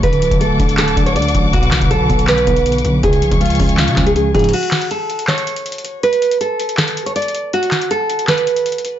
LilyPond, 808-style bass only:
\new Staff \with { instrumentName = "808-style bass" } { \clef bass \time 4/4 \key cis \phrygian \tempo 4 = 160 d,,8. d,,8. d,,4 d,,8 d,8 a,,8 | b,,8 b,,16 b,,16 b,,8 b,,4 b,,4 b,,8 | cis,8 b,,16 cis,8. cis,8. cis16 cis,4 gis,8 | r1 |
r1 | r1 | }